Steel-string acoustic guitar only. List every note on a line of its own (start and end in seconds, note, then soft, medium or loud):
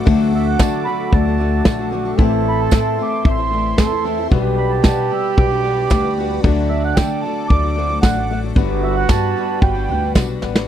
0.05 0.58 D3 loud
0.05 0.59 A3 loud
0.05 0.60 D4 loud
0.05 0.60 F#4 loud
0.59 0.84 D3 medium
0.59 0.86 A3 medium
0.59 0.86 D4 medium
0.59 0.87 F#4 medium
0.85 1.25 D3 medium
0.85 1.26 A3 medium
0.85 1.26 D4 medium
0.85 1.24 F#4 medium
1.25 1.38 A3 soft
1.25 1.39 D4 medium
1.25 1.39 F#4 medium
1.38 1.64 D3 medium
1.38 1.65 A3 medium
1.38 1.66 D4 medium
1.38 1.67 F#4 medium
1.65 1.79 D3 medium
1.65 1.79 A3 medium
1.65 1.79 D4 medium
1.65 1.78 F#4 loud
1.79 1.91 A3 soft
1.79 1.92 D4 medium
1.79 1.92 F#4 medium
1.91 2.05 D3 medium
1.91 2.06 A3 medium
1.91 2.05 D4 medium
1.91 2.04 F#4 medium
2.05 2.18 A3 medium
2.05 2.19 D4 medium
2.05 2.19 F#4 medium
2.18 2.69 A2 loud
2.18 2.70 E3 loud
2.18 2.70 A3 loud
2.18 2.70 C4 loud
2.18 2.71 E4 loud
2.70 2.98 A2 medium
2.70 2.96 E3 medium
2.70 2.98 A3 medium
2.70 2.98 C4 medium
2.70 2.99 E4 medium
2.98 3.38 E3 medium
2.98 3.39 A3 medium
2.98 3.37 C4 medium
2.98 3.36 E4 medium
3.38 3.51 A3 soft
3.38 3.52 C4 medium
3.38 3.51 E4 medium
3.51 3.78 E3 medium
3.51 3.78 A3 medium
3.51 3.79 C4 medium
3.51 3.80 E4 medium
3.78 3.91 A2 medium
3.78 3.92 E3 medium
3.78 3.92 A3 medium
3.78 3.92 C4 medium
3.78 3.91 E4 medium
3.92 4.05 A3 soft
3.92 4.05 C4 medium
3.92 4.05 E4 medium
4.05 4.18 E3 medium
4.05 4.19 A3 medium
4.05 4.18 C4 medium
4.05 4.17 E4 medium
4.18 4.31 A3 medium
4.18 4.32 C4 medium
4.18 4.31 E4 medium
4.31 4.81 B2 loud
4.31 4.82 G3 loud
4.31 4.83 B3 loud
4.31 4.84 D4 loud
4.83 5.10 B2 medium
4.83 5.09 G3 loud
4.83 5.10 B3 medium
4.83 5.11 D4 medium
4.83 5.11 F#4 loud
5.10 5.50 G3 medium
5.10 5.51 B3 medium
5.10 5.50 D4 medium
5.51 5.64 B3 soft
5.51 5.64 D4 medium
5.51 5.64 F#4 medium
5.65 5.78 G3 medium
5.65 5.78 B3 medium
5.65 5.78 D4 medium
5.65 5.77 F#4 medium
5.78 5.91 B3 soft
5.78 5.92 D4 medium
5.78 5.91 F#4 medium
5.92 6.04 B2 medium
5.92 6.04 G3 medium
5.92 6.05 B3 loud
5.92 6.05 D4 loud
5.92 6.03 F#4 loud
6.05 6.17 B3 soft
6.05 6.18 D4 medium
6.05 6.18 F#4 medium
6.17 6.31 G3 medium
6.17 6.31 B3 medium
6.17 6.31 D4 medium
6.17 6.29 F#4 medium
6.30 6.44 B3 medium
6.30 6.43 D4 medium
6.30 6.44 F#4 medium
6.43 6.96 D3 loud
6.43 6.98 F#3 loud
6.43 6.97 A3 loud
6.43 6.98 D4 loud
6.43 6.99 F#4 loud
6.97 7.23 D3 medium
6.97 7.22 F#3 medium
6.97 7.23 A3 medium
6.97 7.24 D4 medium
6.97 7.25 F#4 loud
7.23 7.63 F#3 medium
7.23 7.64 A3 medium
7.23 7.64 D4 medium
7.23 7.62 F#4 medium
7.63 7.76 A3 soft
7.63 7.77 D4 medium
7.63 7.77 F#4 medium
7.76 7.89 F#3 medium
7.76 7.90 A3 medium
7.76 7.89 D4 medium
7.76 7.87 F#4 medium
7.89 8.03 A3 soft
7.89 8.03 D4 soft
7.89 8.02 F#4 medium
8.03 8.16 D3 medium
8.03 8.17 F#3 medium
8.03 8.17 A3 loud
8.03 8.17 D4 medium
8.03 8.15 F#4 medium
8.17 8.30 A3 soft
8.17 8.30 D4 medium
8.17 8.30 F#4 medium
8.31 8.43 F#3 medium
8.31 8.44 A3 medium
8.31 8.44 D4 medium
8.31 8.42 F#4 medium
8.44 8.57 A3 soft
8.44 8.56 D4 medium
8.44 8.56 F#4 medium
8.57 9.08 G3 loud
8.57 9.09 B3 loud
8.57 9.09 D4 loud
8.57 9.09 F#4 loud
9.09 9.35 G3 medium
9.09 9.36 B3 medium
9.09 9.36 D4 medium
9.09 9.36 F#4 medium
9.36 9.76 G3 medium
9.36 9.76 B3 medium
9.36 9.75 D4 medium
9.36 9.73 F#4 medium
9.75 9.88 B3 soft
9.75 9.89 D4 medium
9.75 9.88 F#4 medium
9.88 10.02 G3 medium
9.88 10.02 B3 medium
9.88 10.03 D4 medium
9.88 10.01 F#4 medium
10.02 10.15 B3 soft
10.02 10.16 D4 soft
10.02 10.15 F#4 medium
10.15 10.28 G3 medium
10.15 10.29 B3 medium
10.15 10.29 D4 medium
10.15 10.27 F#4 medium
10.28 10.42 B3 soft
10.28 10.43 D4 medium
10.28 10.42 F#4 medium
10.42 10.55 G3 medium
10.42 10.56 B3 medium
10.42 10.56 D4 medium
10.42 10.55 F#4 medium
10.56 10.68 B3 medium
10.56 10.68 D4 medium
10.56 10.68 F#4 medium